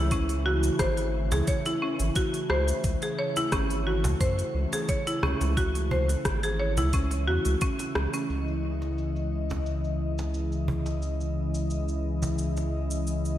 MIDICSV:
0, 0, Header, 1, 6, 480
1, 0, Start_track
1, 0, Key_signature, 4, "minor"
1, 0, Tempo, 681818
1, 82, Time_signature, 4, 2, 24, 8
1, 9420, End_track
2, 0, Start_track
2, 0, Title_t, "Marimba"
2, 0, Program_c, 0, 12
2, 0, Note_on_c, 0, 64, 77
2, 76, Note_off_c, 0, 64, 0
2, 82, Note_on_c, 0, 61, 83
2, 155, Note_off_c, 0, 61, 0
2, 322, Note_on_c, 0, 66, 80
2, 443, Note_off_c, 0, 66, 0
2, 560, Note_on_c, 0, 72, 84
2, 682, Note_off_c, 0, 72, 0
2, 928, Note_on_c, 0, 68, 75
2, 1030, Note_off_c, 0, 68, 0
2, 1041, Note_on_c, 0, 73, 87
2, 1162, Note_off_c, 0, 73, 0
2, 1169, Note_on_c, 0, 64, 74
2, 1276, Note_off_c, 0, 64, 0
2, 1282, Note_on_c, 0, 61, 76
2, 1355, Note_off_c, 0, 61, 0
2, 1522, Note_on_c, 0, 66, 83
2, 1643, Note_off_c, 0, 66, 0
2, 1763, Note_on_c, 0, 72, 77
2, 1883, Note_off_c, 0, 72, 0
2, 2131, Note_on_c, 0, 68, 77
2, 2231, Note_off_c, 0, 68, 0
2, 2243, Note_on_c, 0, 73, 79
2, 2363, Note_off_c, 0, 73, 0
2, 2372, Note_on_c, 0, 64, 80
2, 2477, Note_off_c, 0, 64, 0
2, 2483, Note_on_c, 0, 61, 91
2, 2555, Note_off_c, 0, 61, 0
2, 2722, Note_on_c, 0, 66, 75
2, 2843, Note_off_c, 0, 66, 0
2, 2962, Note_on_c, 0, 72, 83
2, 3083, Note_off_c, 0, 72, 0
2, 3329, Note_on_c, 0, 68, 74
2, 3430, Note_off_c, 0, 68, 0
2, 3442, Note_on_c, 0, 73, 80
2, 3563, Note_off_c, 0, 73, 0
2, 3571, Note_on_c, 0, 64, 81
2, 3677, Note_off_c, 0, 64, 0
2, 3682, Note_on_c, 0, 61, 84
2, 3755, Note_off_c, 0, 61, 0
2, 3923, Note_on_c, 0, 66, 85
2, 4043, Note_off_c, 0, 66, 0
2, 4163, Note_on_c, 0, 72, 75
2, 4284, Note_off_c, 0, 72, 0
2, 4530, Note_on_c, 0, 68, 81
2, 4631, Note_off_c, 0, 68, 0
2, 4643, Note_on_c, 0, 73, 77
2, 4764, Note_off_c, 0, 73, 0
2, 4771, Note_on_c, 0, 64, 81
2, 4877, Note_off_c, 0, 64, 0
2, 4883, Note_on_c, 0, 61, 86
2, 4955, Note_off_c, 0, 61, 0
2, 5122, Note_on_c, 0, 66, 79
2, 5243, Note_off_c, 0, 66, 0
2, 5362, Note_on_c, 0, 61, 81
2, 5483, Note_off_c, 0, 61, 0
2, 5729, Note_on_c, 0, 61, 76
2, 5836, Note_off_c, 0, 61, 0
2, 9420, End_track
3, 0, Start_track
3, 0, Title_t, "Analog synth pad"
3, 0, Program_c, 1, 89
3, 0, Note_on_c, 1, 49, 79
3, 0, Note_on_c, 1, 52, 75
3, 0, Note_on_c, 1, 57, 69
3, 0, Note_on_c, 1, 64, 90
3, 5813, Note_off_c, 1, 49, 0
3, 5813, Note_off_c, 1, 52, 0
3, 5813, Note_off_c, 1, 57, 0
3, 5813, Note_off_c, 1, 64, 0
3, 5841, Note_on_c, 1, 64, 82
3, 5842, Note_on_c, 1, 52, 65
3, 5842, Note_on_c, 1, 56, 67
3, 5842, Note_on_c, 1, 75, 64
3, 5843, Note_on_c, 1, 49, 75
3, 9420, Note_off_c, 1, 49, 0
3, 9420, Note_off_c, 1, 52, 0
3, 9420, Note_off_c, 1, 56, 0
3, 9420, Note_off_c, 1, 64, 0
3, 9420, Note_off_c, 1, 75, 0
3, 9420, End_track
4, 0, Start_track
4, 0, Title_t, "Analog synth bass"
4, 0, Program_c, 2, 38
4, 0, Note_on_c, 2, 37, 83
4, 495, Note_off_c, 2, 37, 0
4, 560, Note_on_c, 2, 32, 90
4, 927, Note_on_c, 2, 37, 97
4, 938, Note_off_c, 2, 32, 0
4, 1000, Note_off_c, 2, 37, 0
4, 1407, Note_on_c, 2, 32, 102
4, 1480, Note_off_c, 2, 32, 0
4, 1760, Note_on_c, 2, 37, 90
4, 1919, Note_off_c, 2, 37, 0
4, 2000, Note_on_c, 2, 37, 95
4, 2082, Note_off_c, 2, 37, 0
4, 2481, Note_on_c, 2, 32, 97
4, 2849, Note_on_c, 2, 37, 95
4, 2859, Note_off_c, 2, 32, 0
4, 2920, Note_off_c, 2, 37, 0
4, 2960, Note_on_c, 2, 42, 98
4, 3119, Note_off_c, 2, 42, 0
4, 3199, Note_on_c, 2, 37, 83
4, 3282, Note_off_c, 2, 37, 0
4, 3680, Note_on_c, 2, 37, 91
4, 3762, Note_off_c, 2, 37, 0
4, 3809, Note_on_c, 2, 37, 83
4, 4336, Note_off_c, 2, 37, 0
4, 4401, Note_on_c, 2, 32, 92
4, 4770, Note_on_c, 2, 37, 95
4, 4781, Note_off_c, 2, 32, 0
4, 5122, Note_on_c, 2, 40, 104
4, 5132, Note_off_c, 2, 37, 0
4, 5203, Note_off_c, 2, 40, 0
4, 5249, Note_on_c, 2, 37, 89
4, 5321, Note_off_c, 2, 37, 0
4, 5602, Note_on_c, 2, 37, 97
4, 5683, Note_off_c, 2, 37, 0
4, 5841, Note_on_c, 2, 37, 80
4, 9420, Note_off_c, 2, 37, 0
4, 9420, End_track
5, 0, Start_track
5, 0, Title_t, "Cajon"
5, 928, Note_on_c, 9, 38, 81
5, 930, Note_on_c, 9, 36, 81
5, 998, Note_off_c, 9, 38, 0
5, 1000, Note_off_c, 9, 36, 0
5, 1168, Note_on_c, 9, 38, 60
5, 1238, Note_off_c, 9, 38, 0
5, 2372, Note_on_c, 9, 38, 57
5, 2443, Note_off_c, 9, 38, 0
5, 2845, Note_on_c, 9, 38, 84
5, 2851, Note_on_c, 9, 36, 84
5, 2915, Note_off_c, 9, 38, 0
5, 2921, Note_off_c, 9, 36, 0
5, 3328, Note_on_c, 9, 38, 73
5, 3398, Note_off_c, 9, 38, 0
5, 3683, Note_on_c, 9, 36, 84
5, 3753, Note_off_c, 9, 36, 0
5, 3810, Note_on_c, 9, 38, 70
5, 3880, Note_off_c, 9, 38, 0
5, 4162, Note_on_c, 9, 36, 88
5, 4232, Note_off_c, 9, 36, 0
5, 4290, Note_on_c, 9, 38, 54
5, 4361, Note_off_c, 9, 38, 0
5, 4769, Note_on_c, 9, 38, 73
5, 4770, Note_on_c, 9, 36, 77
5, 4839, Note_off_c, 9, 38, 0
5, 4840, Note_off_c, 9, 36, 0
5, 5004, Note_on_c, 9, 38, 61
5, 5075, Note_off_c, 9, 38, 0
5, 5489, Note_on_c, 9, 38, 64
5, 5559, Note_off_c, 9, 38, 0
5, 5601, Note_on_c, 9, 38, 66
5, 5671, Note_off_c, 9, 38, 0
5, 6208, Note_on_c, 9, 38, 46
5, 6278, Note_off_c, 9, 38, 0
5, 6694, Note_on_c, 9, 36, 73
5, 6695, Note_on_c, 9, 38, 66
5, 6765, Note_off_c, 9, 36, 0
5, 6765, Note_off_c, 9, 38, 0
5, 7173, Note_on_c, 9, 38, 71
5, 7243, Note_off_c, 9, 38, 0
5, 7519, Note_on_c, 9, 36, 84
5, 7590, Note_off_c, 9, 36, 0
5, 7645, Note_on_c, 9, 38, 59
5, 7715, Note_off_c, 9, 38, 0
5, 8606, Note_on_c, 9, 36, 74
5, 8611, Note_on_c, 9, 38, 58
5, 8677, Note_off_c, 9, 36, 0
5, 8682, Note_off_c, 9, 38, 0
5, 8852, Note_on_c, 9, 38, 55
5, 8923, Note_off_c, 9, 38, 0
5, 9420, End_track
6, 0, Start_track
6, 0, Title_t, "Drums"
6, 78, Note_on_c, 9, 46, 65
6, 79, Note_on_c, 9, 69, 52
6, 80, Note_on_c, 9, 36, 99
6, 149, Note_off_c, 9, 46, 0
6, 149, Note_off_c, 9, 69, 0
6, 150, Note_off_c, 9, 36, 0
6, 206, Note_on_c, 9, 46, 46
6, 206, Note_on_c, 9, 69, 30
6, 276, Note_off_c, 9, 46, 0
6, 277, Note_off_c, 9, 69, 0
6, 445, Note_on_c, 9, 46, 30
6, 445, Note_on_c, 9, 69, 61
6, 515, Note_off_c, 9, 46, 0
6, 516, Note_off_c, 9, 69, 0
6, 558, Note_on_c, 9, 37, 74
6, 558, Note_on_c, 9, 46, 66
6, 559, Note_on_c, 9, 69, 51
6, 560, Note_on_c, 9, 36, 109
6, 629, Note_off_c, 9, 37, 0
6, 629, Note_off_c, 9, 46, 0
6, 629, Note_off_c, 9, 69, 0
6, 631, Note_off_c, 9, 36, 0
6, 685, Note_on_c, 9, 46, 44
6, 686, Note_on_c, 9, 69, 32
6, 756, Note_off_c, 9, 46, 0
6, 756, Note_off_c, 9, 69, 0
6, 927, Note_on_c, 9, 69, 65
6, 997, Note_off_c, 9, 69, 0
6, 1038, Note_on_c, 9, 46, 69
6, 1039, Note_on_c, 9, 69, 55
6, 1040, Note_on_c, 9, 36, 102
6, 1109, Note_off_c, 9, 46, 0
6, 1109, Note_off_c, 9, 69, 0
6, 1111, Note_off_c, 9, 36, 0
6, 1166, Note_on_c, 9, 46, 44
6, 1166, Note_on_c, 9, 69, 31
6, 1236, Note_off_c, 9, 46, 0
6, 1237, Note_off_c, 9, 69, 0
6, 1405, Note_on_c, 9, 46, 31
6, 1405, Note_on_c, 9, 69, 60
6, 1475, Note_off_c, 9, 46, 0
6, 1476, Note_off_c, 9, 69, 0
6, 1517, Note_on_c, 9, 46, 66
6, 1518, Note_on_c, 9, 69, 52
6, 1520, Note_on_c, 9, 36, 96
6, 1588, Note_off_c, 9, 46, 0
6, 1588, Note_off_c, 9, 69, 0
6, 1591, Note_off_c, 9, 36, 0
6, 1646, Note_on_c, 9, 46, 44
6, 1647, Note_on_c, 9, 69, 33
6, 1717, Note_off_c, 9, 46, 0
6, 1717, Note_off_c, 9, 69, 0
6, 1758, Note_on_c, 9, 37, 77
6, 1828, Note_off_c, 9, 37, 0
6, 1887, Note_on_c, 9, 46, 29
6, 1887, Note_on_c, 9, 69, 65
6, 1957, Note_off_c, 9, 46, 0
6, 1958, Note_off_c, 9, 69, 0
6, 1999, Note_on_c, 9, 46, 63
6, 2000, Note_on_c, 9, 69, 54
6, 2001, Note_on_c, 9, 36, 98
6, 2070, Note_off_c, 9, 46, 0
6, 2070, Note_off_c, 9, 69, 0
6, 2071, Note_off_c, 9, 36, 0
6, 2126, Note_on_c, 9, 46, 47
6, 2127, Note_on_c, 9, 69, 30
6, 2197, Note_off_c, 9, 46, 0
6, 2197, Note_off_c, 9, 69, 0
6, 2368, Note_on_c, 9, 46, 32
6, 2368, Note_on_c, 9, 69, 63
6, 2438, Note_off_c, 9, 46, 0
6, 2438, Note_off_c, 9, 69, 0
6, 2479, Note_on_c, 9, 37, 76
6, 2479, Note_on_c, 9, 46, 63
6, 2480, Note_on_c, 9, 69, 52
6, 2481, Note_on_c, 9, 36, 107
6, 2550, Note_off_c, 9, 37, 0
6, 2550, Note_off_c, 9, 46, 0
6, 2550, Note_off_c, 9, 69, 0
6, 2551, Note_off_c, 9, 36, 0
6, 2608, Note_on_c, 9, 46, 44
6, 2608, Note_on_c, 9, 69, 29
6, 2678, Note_off_c, 9, 46, 0
6, 2679, Note_off_c, 9, 69, 0
6, 2848, Note_on_c, 9, 69, 63
6, 2919, Note_off_c, 9, 69, 0
6, 2961, Note_on_c, 9, 36, 96
6, 2961, Note_on_c, 9, 46, 70
6, 2961, Note_on_c, 9, 69, 57
6, 3031, Note_off_c, 9, 36, 0
6, 3031, Note_off_c, 9, 46, 0
6, 3032, Note_off_c, 9, 69, 0
6, 3089, Note_on_c, 9, 46, 43
6, 3089, Note_on_c, 9, 69, 32
6, 3159, Note_off_c, 9, 46, 0
6, 3160, Note_off_c, 9, 69, 0
6, 3329, Note_on_c, 9, 46, 33
6, 3329, Note_on_c, 9, 69, 64
6, 3399, Note_off_c, 9, 46, 0
6, 3400, Note_off_c, 9, 69, 0
6, 3440, Note_on_c, 9, 46, 67
6, 3441, Note_on_c, 9, 36, 94
6, 3441, Note_on_c, 9, 69, 53
6, 3511, Note_off_c, 9, 46, 0
6, 3511, Note_off_c, 9, 69, 0
6, 3512, Note_off_c, 9, 36, 0
6, 3570, Note_on_c, 9, 46, 46
6, 3570, Note_on_c, 9, 69, 35
6, 3640, Note_off_c, 9, 46, 0
6, 3641, Note_off_c, 9, 69, 0
6, 3682, Note_on_c, 9, 37, 76
6, 3752, Note_off_c, 9, 37, 0
6, 3809, Note_on_c, 9, 46, 30
6, 3809, Note_on_c, 9, 69, 65
6, 3879, Note_off_c, 9, 46, 0
6, 3880, Note_off_c, 9, 69, 0
6, 3921, Note_on_c, 9, 36, 110
6, 3923, Note_on_c, 9, 46, 67
6, 3923, Note_on_c, 9, 69, 51
6, 3992, Note_off_c, 9, 36, 0
6, 3993, Note_off_c, 9, 46, 0
6, 3994, Note_off_c, 9, 69, 0
6, 4050, Note_on_c, 9, 46, 45
6, 4050, Note_on_c, 9, 69, 29
6, 4120, Note_off_c, 9, 46, 0
6, 4121, Note_off_c, 9, 69, 0
6, 4290, Note_on_c, 9, 46, 30
6, 4290, Note_on_c, 9, 69, 62
6, 4360, Note_off_c, 9, 46, 0
6, 4361, Note_off_c, 9, 69, 0
6, 4401, Note_on_c, 9, 36, 109
6, 4401, Note_on_c, 9, 37, 78
6, 4401, Note_on_c, 9, 46, 68
6, 4401, Note_on_c, 9, 69, 50
6, 4471, Note_off_c, 9, 37, 0
6, 4471, Note_off_c, 9, 46, 0
6, 4472, Note_off_c, 9, 36, 0
6, 4472, Note_off_c, 9, 69, 0
6, 4528, Note_on_c, 9, 46, 48
6, 4529, Note_on_c, 9, 69, 29
6, 4599, Note_off_c, 9, 46, 0
6, 4599, Note_off_c, 9, 69, 0
6, 4768, Note_on_c, 9, 46, 32
6, 4768, Note_on_c, 9, 69, 62
6, 4838, Note_off_c, 9, 46, 0
6, 4839, Note_off_c, 9, 69, 0
6, 4880, Note_on_c, 9, 46, 75
6, 4880, Note_on_c, 9, 69, 58
6, 4882, Note_on_c, 9, 36, 101
6, 4950, Note_off_c, 9, 46, 0
6, 4950, Note_off_c, 9, 69, 0
6, 4952, Note_off_c, 9, 36, 0
6, 5007, Note_on_c, 9, 46, 47
6, 5008, Note_on_c, 9, 69, 32
6, 5078, Note_off_c, 9, 46, 0
6, 5078, Note_off_c, 9, 69, 0
6, 5246, Note_on_c, 9, 46, 33
6, 5246, Note_on_c, 9, 69, 61
6, 5316, Note_off_c, 9, 46, 0
6, 5317, Note_off_c, 9, 69, 0
6, 5358, Note_on_c, 9, 46, 65
6, 5359, Note_on_c, 9, 69, 53
6, 5362, Note_on_c, 9, 36, 104
6, 5429, Note_off_c, 9, 46, 0
6, 5429, Note_off_c, 9, 69, 0
6, 5432, Note_off_c, 9, 36, 0
6, 5486, Note_on_c, 9, 46, 49
6, 5487, Note_on_c, 9, 69, 34
6, 5557, Note_off_c, 9, 46, 0
6, 5557, Note_off_c, 9, 69, 0
6, 5599, Note_on_c, 9, 37, 83
6, 5670, Note_off_c, 9, 37, 0
6, 5727, Note_on_c, 9, 46, 32
6, 5727, Note_on_c, 9, 69, 65
6, 5797, Note_off_c, 9, 46, 0
6, 5798, Note_off_c, 9, 69, 0
6, 5840, Note_on_c, 9, 69, 44
6, 5911, Note_off_c, 9, 69, 0
6, 5969, Note_on_c, 9, 69, 28
6, 6039, Note_off_c, 9, 69, 0
6, 6208, Note_on_c, 9, 69, 54
6, 6279, Note_off_c, 9, 69, 0
6, 6322, Note_on_c, 9, 69, 46
6, 6392, Note_off_c, 9, 69, 0
6, 6450, Note_on_c, 9, 69, 28
6, 6520, Note_off_c, 9, 69, 0
6, 6688, Note_on_c, 9, 69, 59
6, 6758, Note_off_c, 9, 69, 0
6, 6802, Note_on_c, 9, 69, 48
6, 6872, Note_off_c, 9, 69, 0
6, 6929, Note_on_c, 9, 69, 26
6, 6999, Note_off_c, 9, 69, 0
6, 7168, Note_on_c, 9, 69, 55
6, 7239, Note_off_c, 9, 69, 0
6, 7280, Note_on_c, 9, 69, 46
6, 7351, Note_off_c, 9, 69, 0
6, 7406, Note_on_c, 9, 69, 30
6, 7477, Note_off_c, 9, 69, 0
6, 7646, Note_on_c, 9, 69, 54
6, 7717, Note_off_c, 9, 69, 0
6, 7759, Note_on_c, 9, 69, 47
6, 7830, Note_off_c, 9, 69, 0
6, 7889, Note_on_c, 9, 69, 29
6, 7959, Note_off_c, 9, 69, 0
6, 8127, Note_on_c, 9, 69, 58
6, 8197, Note_off_c, 9, 69, 0
6, 8239, Note_on_c, 9, 69, 49
6, 8309, Note_off_c, 9, 69, 0
6, 8366, Note_on_c, 9, 69, 28
6, 8436, Note_off_c, 9, 69, 0
6, 8606, Note_on_c, 9, 69, 59
6, 8676, Note_off_c, 9, 69, 0
6, 8719, Note_on_c, 9, 69, 49
6, 8789, Note_off_c, 9, 69, 0
6, 8847, Note_on_c, 9, 69, 29
6, 8918, Note_off_c, 9, 69, 0
6, 9087, Note_on_c, 9, 69, 58
6, 9158, Note_off_c, 9, 69, 0
6, 9201, Note_on_c, 9, 69, 50
6, 9272, Note_off_c, 9, 69, 0
6, 9329, Note_on_c, 9, 69, 31
6, 9400, Note_off_c, 9, 69, 0
6, 9420, End_track
0, 0, End_of_file